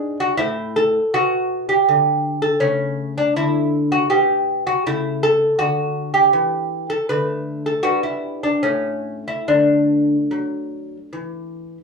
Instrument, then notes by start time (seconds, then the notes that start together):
lute
Already playing: G#2 D4 G#4
0.20 F#4
0.37 A2 C4 E4
0.76 A4
1.14 B2 F#4
1.69 G4
1.88 D3
2.42 A4
2.60 C#3 A3 C#4
3.18 D4
3.36 D3 E4
3.92 F#4
4.10 B2 G4
4.67 F#4
4.86 C#3 A3 E4
5.23 A4
5.59 D3 F#4
6.14 G4
6.33 E3
6.90 A4
7.09 D3 A3 B4
7.66 A4
7.83 G2 B3 F#4
8.03 E4
8.43 D4
8.63 A2 A3 C#4
9.28 E4
9.48 D3 A3 D4
10.31 F#3
11.13 E3